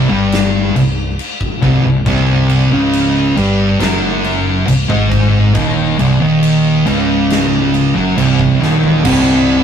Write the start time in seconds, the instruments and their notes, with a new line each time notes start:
0.08 fingered electric bass G1, distorted electric guitar G2 G3
0.32 snare, crash
0.75 fingered electric bass C1, distorted electric guitar C2, crash
1.19 crash
1.41 kick
1.61 fingered electric bass C1, distorted electric guitar C2 C3, kick, crash
1.83 fingered electric bass C1, distorted electric guitar C2
2.05 fingered electric bass C1, distorted electric guitar C2 C3, kick, crash
2.49 crash
2.70 fingered electric bass C#1, distorted electric guitar C#2 C#3
2.93 crash
3.36 fingered electric bass G1, distorted electric guitar G2 G3, crash
3.80 fingered electric bass F#1, distorted electric guitar F#2 F#3, snare, crash
4.24 crash
4.67 fingered electric bass C1, distorted electric guitar C2, crash
4.88 fingered electric bass G#1, distorted electric guitar G#2 G#3, kick
5.12 kick, crash
5.54 fingered electric bass D#1, distorted electric guitar D#2 D#3, kick, crash
5.98 fingered electric bass C1, distorted electric guitar C2 C3, crash
6.20 fingered electric bass D#1, distorted electric guitar D#2 D#3
6.43 crash
6.86 fingered electric bass C#1, distorted electric guitar C#2 C#3, crash
7.30 snare, crash
7.74 crash
7.95 fingered electric bass F#1, distorted electric guitar F#2 F#3
8.17 fingered electric bass C1, distorted electric guitar C2 C3, crash
8.39 kick
8.61 fingered electric bass D#1, distorted electric guitar D#2 D#3, snare
8.84 floor tom
9.05 fingered electric bass C1, distorted electric guitar C2 C3, kick, crash